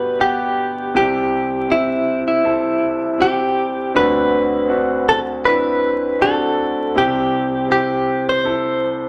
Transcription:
0.00 0.90 G1 medium
0.00 0.91 G2 medium
0.00 0.19 B3 medium
0.00 0.96 F#4 medium
0.00 0.17 G4 medium
0.00 0.96 A4 medium
0.00 0.21 B4 medium
0.19 0.91 B3 medium
0.19 0.91 G4 medium
0.19 0.95 G4 medium
0.19 0.91 F#5 medium
0.94 3.90 C2 medium
0.94 3.91 C3 medium
0.94 1.66 C4 medium
0.94 1.66 E4 medium
0.94 1.66 G4 medium
0.94 1.73 G4 medium
1.69 2.40 C4 medium
1.69 2.41 E4 medium
1.69 2.23 E4 medium
1.69 2.41 G4 medium
2.28 3.23 E4 medium
2.44 3.15 C4 medium
2.44 3.16 E4 medium
2.44 3.16 A4 medium
3.18 3.90 C4 medium
3.18 3.91 E4 medium
3.18 3.91 G4 medium
3.18 3.92 G4 medium
3.94 6.91 D2 medium
3.94 6.91 D3 medium
3.94 4.66 C4 medium
3.94 4.66 D4 medium
3.94 4.67 F#4 medium
3.94 5.08 B4 loud
4.68 5.40 C4 medium
4.68 5.40 D4 medium
4.68 5.41 F#4 medium
5.09 5.19 A4 loud
5.44 6.16 C4 medium
5.44 6.16 D4 medium
5.44 6.16 E4 medium
5.44 6.22 B4 medium
6.19 6.91 C4 medium
6.19 6.91 D4 medium
6.19 6.92 F#4 medium
6.19 6.98 A4 medium
6.94 9.09 C2 medium
6.94 9.09 C3 medium
6.94 7.66 C4 medium
6.94 7.66 E4 medium
6.94 7.67 G4 medium
7.68 8.40 C4 medium
7.68 8.41 E4 medium
7.68 8.41 G4 medium
7.68 8.29 G4 medium
8.29 9.09 C5 medium
8.44 9.09 C4 medium
8.44 9.09 E4 medium
8.44 9.09 A4 medium

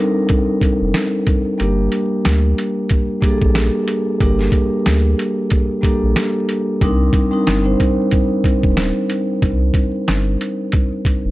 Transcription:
0.00 1.58 G3 medium
0.00 1.62 C4 medium
0.00 1.59 D4 medium
0.00 1.62 D#4 medium
0.00 1.62 A4 loud
0.00 1.61 A#4 loud
0.29 kick loud
0.29 closed hi-hat medium
0.61 kick medium
0.61 closed hi-hat medium
0.81 0.93 F1 medium
0.94 snare loud
0.94 snare medium
0.94 closed hi-hat loud
1.27 kick medium
1.27 closed hi-hat medium
1.58 1.88 G1 loud
1.58 2.52 G3 medium
1.58 2.53 A#3 medium
1.58 2.53 D4 medium
1.58 2.53 G4 medium
1.58 2.54 A#4 medium
1.58 closed hi-hat medium
1.92 closed hi-hat medium
2.25 2.54 D2 medium
2.25 snare loud
2.25 snare medium
2.25 closed hi-hat medium
2.58 closed hi-hat medium
2.89 kick loud
2.89 closed hi-hat medium
3.21 3.92 G3 medium
3.21 3.92 A#3 medium
3.21 3.93 D4 medium
3.21 3.93 G4 medium
3.21 3.30 G#4 medium
3.21 kick loud
3.21 closed hi-hat medium
3.30 3.97 A4 medium
3.42 3.70 A#1 medium
3.42 kick medium
3.55 snare loud
3.55 snare medium
3.55 closed hi-hat loud
3.88 closed hi-hat medium
4.20 4.49 G1 loud
4.20 5.14 G3 medium
4.20 5.14 A#3 medium
4.20 5.15 D4 medium
4.20 5.15 G4 medium
4.20 5.15 A#4 medium
4.20 kick loud
4.20 closed hi-hat medium
4.39 snare soft
4.52 kick loud
4.52 closed hi-hat medium
4.86 5.15 D2 loud
4.86 snare loud
4.86 snare medium
4.86 closed hi-hat medium
5.19 closed hi-hat medium
5.50 kick loud
5.50 closed hi-hat medium
5.81 6.53 G3 medium
5.81 6.53 A#3 medium
5.81 6.53 D4 medium
5.81 6.54 G4 medium
5.81 6.54 A4 medium
5.81 kick medium
5.81 closed hi-hat medium
6.03 6.15 A#1 medium
6.16 snare loud
6.16 snare medium
6.16 closed hi-hat loud
6.49 closed hi-hat medium
6.81 7.10 C2 loud
6.81 7.17 G3 medium
6.81 7.17 C4 medium
6.81 7.17 D4 medium
6.81 7.18 D#4 medium
6.81 7.18 A#4 medium
6.81 kick loud
6.81 closed hi-hat medium
7.13 kick loud
7.13 closed hi-hat medium
7.31 7.54 G3 medium
7.31 7.54 C4 medium
7.31 7.54 D4 medium
7.31 7.55 D#4 medium
7.31 7.55 A#4 loud
7.47 7.75 G1 medium
7.47 snare loud
7.47 snare medium
7.47 closed hi-hat medium
7.63 8.56 G3 loud
7.63 8.56 C4 medium
7.63 8.57 D4 medium
7.63 8.57 D#4 medium
7.63 8.57 C5 loud
7.80 kick medium
7.80 closed hi-hat medium
8.11 kick loud
8.11 closed hi-hat medium
8.44 kick loud
8.44 closed hi-hat medium
8.63 8.92 D#1 medium
8.63 kick medium
8.77 snare loud
8.77 snare medium
8.77 closed hi-hat loud
9.10 closed hi-hat medium
9.42 9.71 C2 loud
9.42 kick loud
9.42 closed hi-hat medium
9.74 kick loud
9.74 closed hi-hat medium
10.08 10.36 G1 medium
10.08 snare loud
10.08 snare medium
10.08 closed hi-hat medium
10.41 closed hi-hat medium
10.72 kick loud
10.72 closed hi-hat medium
11.05 kick medium
11.05 closed hi-hat medium
11.24 11.31 F1 medium

